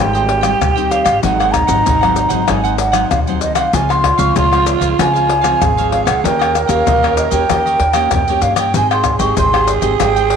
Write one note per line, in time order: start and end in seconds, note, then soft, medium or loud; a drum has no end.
0.00 0.52 G#1 loud
0.00 0.58 G#2 medium
0.00 0.27 G3 medium
0.00 0.28 C4 soft
0.00 0.28 D#4 medium
0.00 1.24 G4 medium
0.00 0.11 G#4 soft
0.00 0.12 C5 soft
0.00 0.12 D#5 soft
0.00 0.12 G5 medium
0.00 0.93 G5 loud
0.13 0.26 C5 soft
0.13 0.26 D#5 medium
0.13 0.26 G5 medium
0.13 pandeiro soft
0.13 maracas soft
0.26 muted cavaquinho stroke soft
0.26 pandeiro medium
0.41 0.70 G3 medium
0.41 0.70 C4 medium
0.41 0.70 D#4 medium
0.41 0.74 C5 medium
0.41 0.74 D#5 medium
0.41 0.73 G5 medium
0.41 pandeiro medium
0.41 tamborim medium
0.41 maracas medium
0.61 1.07 D#2 medium
0.61 1.20 D#3 medium
0.61 pandeiro medium
0.61 tamborim medium
0.61 maracas medium
0.61 surdo loud
0.75 1.18 G3 medium
0.75 1.18 C4 medium
0.75 1.19 D#4 medium
0.75 1.05 C5 medium
0.75 1.04 D#5 medium
0.75 1.03 G5 medium
0.75 pandeiro soft
0.75 maracas soft
0.91 1.23 F5 medium
0.91 pandeiro medium
0.91 maracas medium
1.04 1.20 G#1 medium
1.04 1.21 C5 medium
1.04 1.21 D#5 medium
1.04 1.20 G5 medium
1.04 pandeiro medium
1.04 tamborim medium
1.04 maracas medium
1.23 1.63 G#1 loud
1.23 1.83 G#2 medium
1.23 1.65 F#3 medium
1.23 1.66 C4 medium
1.23 3.47 D#4 loud
1.23 1.38 D#4 medium
1.23 1.66 D#4 medium
1.23 1.38 G#4 medium
1.23 1.38 C5 medium
1.23 1.53 F#5 loud
1.23 1.38 F#5 medium
1.23 pandeiro medium
1.23 maracas medium
1.23 surdo medium
1.40 1.53 G#4 medium
1.40 1.53 C5 medium
1.40 1.53 F#5 medium
1.40 pandeiro soft
1.40 tamborim medium
1.40 maracas soft
1.52 2.42 A#5 loud
1.52 pandeiro medium
1.52 tamborim medium
1.52 maracas medium
1.52 surdo medium
1.67 1.82 G#1 loud
1.67 1.95 F#3 medium
1.67 1.95 C4 medium
1.67 1.96 D#4 medium
1.67 1.84 G#4 medium
1.67 1.84 C5 medium
1.67 1.83 F#5 medium
1.67 pandeiro medium
1.67 maracas medium
1.84 2.26 G#1 medium
1.84 2.45 D#3 medium
1.84 2.00 D#4 soft
1.84 2.00 G#4 medium
1.84 2.00 C5 medium
1.84 2.00 F#5 medium
1.84 pandeiro medium
1.84 maracas medium
1.84 surdo loud
2.01 2.28 F#3 medium
2.01 2.28 C4 medium
2.01 2.28 D#4 medium
2.01 2.30 G#4 medium
2.01 2.28 C5 medium
2.01 2.28 F#5 medium
2.01 pandeiro soft
2.01 tamborim medium
2.01 maracas soft
2.16 pandeiro medium
2.16 maracas medium
2.29 2.45 G#1 medium
2.29 2.42 F#3 medium
2.29 2.43 C4 medium
2.29 2.43 D#4 medium
2.29 2.46 G#4 medium
2.29 2.46 C5 medium
2.29 2.45 F#5 medium
2.29 pandeiro medium
2.29 maracas medium
2.42 2.51 A#5 medium
2.47 3.02 G#1 medium
2.47 3.08 G#2 medium
2.47 2.78 F#3 medium
2.47 2.78 C4 medium
2.47 2.62 D#4 soft
2.47 2.78 D#4 medium
2.47 2.63 G#4 medium
2.47 2.63 C5 medium
2.47 2.62 F#5 medium
2.47 2.78 G#5 medium
2.47 pandeiro medium
2.47 tamborim medium
2.47 maracas medium
2.47 surdo medium
2.64 2.76 G#4 medium
2.64 2.76 C5 medium
2.64 2.77 F#5 medium
2.64 pandeiro soft
2.64 maracas soft
2.77 3.09 F#5 medium
2.77 muted cavaquinho stroke soft
2.77 pandeiro medium
2.77 maracas medium
2.92 3.21 F#3 medium
2.92 3.21 C4 medium
2.92 3.21 D#4 medium
2.92 3.25 G#4 medium
2.92 3.24 C5 medium
2.92 3.24 F#5 medium
2.92 pandeiro medium
2.92 tamborim medium
2.92 maracas medium
3.10 3.55 D#2 medium
3.10 3.70 D#3 medium
3.10 3.19 F5 loud
3.10 pandeiro medium
3.10 tamborim medium
3.10 maracas medium
3.10 surdo medium
3.27 3.69 F#3 medium
3.27 3.69 C4 medium
3.27 3.70 D#4 medium
3.27 3.57 G#4 medium
3.27 3.56 C5 medium
3.27 3.54 F#5 medium
3.27 pandeiro soft
3.27 maracas soft
3.41 3.56 D#5 medium
3.41 pandeiro medium
3.41 maracas medium
3.55 3.70 C2 medium
3.55 3.72 G#4 soft
3.55 3.72 C5 medium
3.55 3.76 F5 medium
3.55 3.71 F#5 medium
3.55 pandeiro medium
3.55 tamborim medium
3.55 maracas medium
3.73 4.14 C#2 loud
3.73 4.33 C#3 medium
3.73 4.03 F3 medium
3.73 4.03 G#3 medium
3.73 4.03 C4 medium
3.73 3.88 F4 medium
3.73 5.65 F4 loud
3.73 3.88 C5 medium
3.73 3.89 C#5 medium
3.73 3.88 F5 medium
3.73 3.92 G#5 loud
3.73 pandeiro medium
3.73 maracas medium
3.73 surdo medium
3.89 4.03 C5 medium
3.89 4.03 C#5 medium
3.89 4.03 F5 medium
3.89 4.21 C6 medium
3.89 pandeiro soft
3.89 tamborim medium
3.89 maracas soft
4.04 muted cavaquinho stroke soft
4.04 pandeiro medium
4.04 tamborim medium
4.04 surdo medium
4.18 4.33 C#2 loud
4.18 4.46 F3 medium
4.18 4.46 G#3 medium
4.18 4.46 C4 medium
4.18 4.35 C5 medium
4.18 4.34 C#5 medium
4.18 4.34 F5 medium
4.18 4.36 C#6 medium
4.18 pandeiro medium
4.18 maracas medium
4.36 4.76 C#2 loud
4.36 4.96 G#2 medium
4.36 4.51 F4 medium
4.36 4.51 C5 medium
4.36 4.51 C#5 medium
4.36 4.51 F5 medium
4.36 4.70 C6 loud
4.36 pandeiro medium
4.36 maracas medium
4.36 surdo loud
4.52 4.79 F3 medium
4.52 4.79 G#3 medium
4.52 4.79 C4 medium
4.52 4.81 C5 medium
4.52 4.80 C#5 medium
4.52 4.79 F5 medium
4.52 pandeiro soft
4.52 tamborim medium
4.52 maracas soft
4.66 pandeiro medium
4.66 maracas medium
4.80 4.95 C#2 medium
4.80 4.93 F3 medium
4.80 4.93 G#3 medium
4.80 4.93 C4 medium
4.80 4.97 C5 medium
4.80 4.97 C#5 medium
4.80 4.96 F5 medium
4.80 pandeiro medium
4.80 maracas medium
4.98 5.53 C#2 loud
4.98 5.59 C#3 medium
4.98 5.29 F3 medium
4.98 5.29 G#3 medium
4.98 5.29 C4 medium
4.98 5.13 F4 soft
4.98 5.13 C5 soft
4.98 5.14 C#5 medium
4.98 5.12 F5 medium
4.98 5.90 G#5 loud
4.98 pandeiro medium
4.98 tamborim medium
4.98 maracas medium
4.98 surdo medium
5.13 5.27 C5 medium
5.13 5.27 C#5 medium
5.13 5.28 F5 medium
5.13 pandeiro soft
5.13 maracas soft
5.28 muted cavaquinho stroke soft
5.28 pandeiro medium
5.41 5.71 F3 medium
5.41 5.72 G#3 medium
5.41 5.72 C4 medium
5.41 5.75 C5 medium
5.41 5.75 C#5 medium
5.41 5.74 F5 medium
5.41 pandeiro medium
5.41 tamborim medium
5.41 maracas medium
5.61 6.08 G#1 loud
5.61 6.21 G#2 medium
5.61 6.27 G#4 medium
5.61 pandeiro medium
5.61 tamborim medium
5.61 maracas medium
5.61 surdo medium
5.77 6.20 F3 medium
5.77 6.21 G#3 medium
5.77 6.21 C4 medium
5.77 6.06 C5 medium
5.77 6.05 C#5 medium
5.77 6.04 F5 medium
5.77 pandeiro soft
5.77 maracas soft
5.91 6.05 F5 medium
5.91 pandeiro medium
6.05 6.21 C#2 medium
6.05 6.23 C5 medium
6.05 6.22 C#5 medium
6.05 6.22 F5 medium
6.05 6.22 F#5 medium
6.05 pandeiro medium
6.05 tamborim medium
6.05 maracas medium
6.24 6.64 D#2 loud
6.24 6.84 D#3 medium
6.24 6.54 A#3 medium
6.24 6.54 C#4 medium
6.24 6.39 D#4 soft
6.24 6.39 G4 medium
6.24 6.54 G4 medium
6.24 8.44 A#4 loud
6.24 6.40 C#5 medium
6.24 6.38 D#5 medium
6.24 6.62 G5 loud
6.24 pandeiro medium
6.24 maracas medium
6.24 surdo medium
6.39 6.53 G4 medium
6.39 6.53 C#5 medium
6.39 6.54 D#5 medium
6.39 pandeiro soft
6.39 tamborim medium
6.39 maracas soft
6.54 muted cavaquinho stroke soft
6.54 pandeiro medium
6.54 tamborim medium
6.54 maracas medium
6.64 6.96 A#3 medium
6.64 6.84 D#5 medium
6.64 6.71 G5 medium
6.69 6.83 D#2 medium
6.69 6.97 C#4 medium
6.69 6.97 G4 medium
6.69 6.85 G4 medium
6.69 6.85 C#5 medium
6.69 7.16 F5 medium
6.69 pandeiro medium
6.69 maracas medium
6.86 7.27 D#2 loud
6.86 7.46 A#2 soft
6.86 7.01 D#4 medium
6.86 7.01 G4 medium
6.86 7.02 C#5 medium
6.86 7.02 D#5 medium
6.86 pandeiro medium
6.86 maracas medium
6.86 surdo loud
7.03 7.29 A#3 medium
7.03 7.30 C#4 medium
7.03 7.30 G4 medium
7.03 7.32 G4 soft
7.03 7.31 C#5 medium
7.03 7.29 D#5 medium
7.03 pandeiro soft
7.03 tamborim medium
7.03 maracas soft
7.17 7.31 D#5 medium
7.17 pandeiro medium
7.17 maracas medium
7.31 7.46 D#2 medium
7.31 7.43 A#3 medium
7.31 7.44 C#4 medium
7.31 7.44 G4 medium
7.31 7.48 G4 medium
7.31 7.48 C#5 medium
7.31 7.47 D#5 medium
7.31 8.44 G5 medium
7.31 pandeiro soft
7.31 maracas medium
7.49 7.76 D#2 medium
7.49 8.09 D#3 medium
7.49 7.79 A#3 medium
7.49 7.79 C#4 medium
7.49 7.64 D#4 soft
7.49 7.65 G4 medium
7.49 7.80 G4 medium
7.49 7.65 C#5 soft
7.49 7.64 D#5 medium
7.49 pandeiro medium
7.49 tamborim medium
7.49 maracas medium
7.49 surdo medium
7.66 7.79 G4 medium
7.66 7.79 C#5 medium
7.66 7.79 D#5 medium
7.66 pandeiro soft
7.66 maracas soft
7.79 8.09 D#2 medium
7.79 pandeiro medium
7.93 8.22 A#3 medium
7.93 8.22 C#4 medium
7.93 8.23 G4 medium
7.93 8.27 G4 medium
7.93 8.26 C#5 medium
7.93 8.25 D#5 medium
7.93 pandeiro medium
7.93 tamborim medium
7.93 maracas medium
8.11 8.41 F2 medium
8.11 8.72 A#2 medium
8.11 pandeiro medium
8.11 tamborim medium
8.11 maracas medium
8.11 surdo medium
8.28 8.71 A#3 medium
8.28 8.71 C#4 medium
8.28 8.58 G4 medium
8.28 8.72 G4 medium
8.28 8.56 C#5 medium
8.28 8.55 D#5 medium
8.28 pandeiro soft
8.28 maracas soft
8.42 8.71 G2 medium
8.42 8.57 F5 medium
8.42 pandeiro medium
8.42 maracas medium
8.56 8.74 G4 medium
8.56 8.73 C#5 medium
8.56 8.72 D#5 medium
8.56 8.73 G5 medium
8.56 pandeiro medium
8.56 tamborim medium
8.56 maracas medium
8.74 9.14 G#1 loud
8.74 9.35 G#3 medium
8.74 9.17 C4 medium
8.74 9.17 D#4 medium
8.74 8.89 G#4 medium
8.74 10.36 G#4 loud
8.74 8.90 C5 medium
8.74 8.90 D#5 medium
8.74 8.90 G5 medium
8.74 8.91 G#5 medium
8.74 pandeiro medium
8.74 maracas medium
8.74 surdo medium
8.91 9.04 C5 medium
8.91 9.04 D#5 medium
8.91 9.05 G5 medium
8.91 9.19 C6 medium
8.91 pandeiro soft
8.91 tamborim medium
8.91 maracas soft
9.04 muted cavaquinho stroke soft
9.04 pandeiro medium
9.04 tamborim medium
9.04 maracas medium
9.04 surdo medium
9.19 9.34 G#1 medium
9.19 9.48 C4 medium
9.19 9.48 D#4 medium
9.19 9.48 G4 medium
9.19 9.36 C5 medium
9.19 9.36 D#5 medium
9.19 9.35 G5 medium
9.19 9.35 C#6 medium
9.19 pandeiro medium
9.19 maracas medium
9.37 9.77 G#1 loud
9.37 9.97 D#3 medium
9.37 9.52 G#4 medium
9.37 9.52 C5 medium
9.37 9.53 D#5 medium
9.37 9.52 G5 medium
9.37 9.71 C6 loud
9.37 pandeiro medium
9.37 maracas medium
9.37 surdo medium
9.53 9.80 C4 medium
9.53 9.80 D#4 medium
9.53 9.80 G4 medium
9.53 9.82 C5 medium
9.53 9.81 D#5 medium
9.53 9.80 G5 medium
9.53 pandeiro soft
9.53 tamborim medium
9.53 maracas soft
9.67 pandeiro medium
9.67 maracas medium
9.81 9.97 G#1 medium
9.81 9.95 C4 medium
9.81 9.95 D#4 medium
9.81 9.95 G4 medium
9.81 9.99 C5 medium
9.81 9.98 D#5 medium
9.81 9.97 G5 medium
9.81 pandeiro medium
9.81 maracas medium
10.00 10.36 G#1 loud
10.00 10.36 G#3 medium
10.00 10.30 C4 soft
10.00 10.30 D#4 soft
10.00 10.30 G4 medium
10.00 10.15 G#4 medium
10.00 10.15 C5 medium
10.00 10.16 D#5 medium
10.00 10.36 G5 loud
10.00 10.15 G5 medium
10.00 pandeiro medium
10.00 tamborim medium
10.00 maracas medium
10.00 surdo medium
10.16 10.29 C5 medium
10.16 10.29 D#5 medium
10.16 10.30 G5 medium
10.16 pandeiro soft
10.16 maracas soft
10.30 muted cavaquinho stroke soft
10.30 pandeiro medium